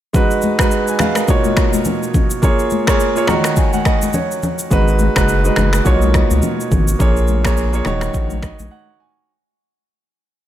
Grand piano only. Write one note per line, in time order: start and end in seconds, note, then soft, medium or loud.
0.13 0.54 G#3 medium
0.13 0.54 D#4 medium
0.13 0.54 F#4 medium
0.13 0.55 B4 loud
0.59 0.84 G#3 medium
0.59 0.84 D#4 medium
0.59 0.85 F#4 medium
0.59 0.72 B4 medium
0.88 1.00 D#5 medium
0.88 1.00 G#5 medium
1.00 1.16 B4 medium
1.00 1.16 F5 medium
1.17 1.44 A#4 medium
1.17 1.44 D#5 medium
1.28 2.32 B2 medium
1.28 2.32 A#3 medium
1.28 2.33 D#4 medium
1.28 2.33 F4 medium
1.28 2.33 C#5 medium
2.42 2.82 A#3 medium
2.42 2.82 F4 medium
2.42 2.83 G#4 medium
2.42 2.83 C#5 medium
2.87 3.12 A#3 medium
2.87 3.13 F4 medium
2.87 3.13 G#4 medium
2.87 3.14 C#5 medium
3.15 3.28 A#3 medium
3.15 3.28 F4 medium
3.15 3.29 G#4 medium
3.15 3.28 C#5 medium
3.27 4.32 D#3 medium
3.27 4.32 D#4 medium
3.27 4.33 F#4 medium
3.27 4.13 C#5 medium
3.27 3.55 A#5 medium
3.57 3.73 G#5 medium
3.74 3.85 F#5 medium
3.86 4.12 D#5 medium
4.14 4.67 C#5 medium
4.70 5.11 G#3 medium
4.70 5.11 D#4 medium
4.70 5.11 F#4 medium
4.70 5.12 B4 loud
5.15 5.41 G#3 medium
5.15 5.41 D#4 medium
5.15 5.42 F#4 medium
5.15 5.42 B4 loud
5.44 5.85 G#3 medium
5.44 5.84 D#4 medium
5.44 5.86 F#4 medium
5.44 5.86 B4 medium
5.84 6.89 B2 medium
5.84 6.89 A#3 medium
5.84 6.89 D#4 medium
5.84 6.90 F4 medium
5.84 6.90 C#5 medium
6.99 7.39 A#3 medium
6.99 7.40 F4 medium
6.99 7.40 G#4 medium
6.99 7.40 C#5 loud
7.44 7.69 A#3 medium
7.44 7.70 F4 medium
7.44 7.70 G#4 medium
7.44 7.71 C#5 medium
7.72 7.85 A#3 medium
7.72 7.85 F4 medium
7.72 7.86 G#4 medium
7.72 7.85 C#5 medium
7.84 8.89 D#3 medium
7.84 8.89 D#4 medium
7.84 8.90 F#4 medium
7.84 8.90 C#5 loud
8.43 8.69 D#5 medium
8.71 8.98 F#5 medium
9.00 9.27 G#5 medium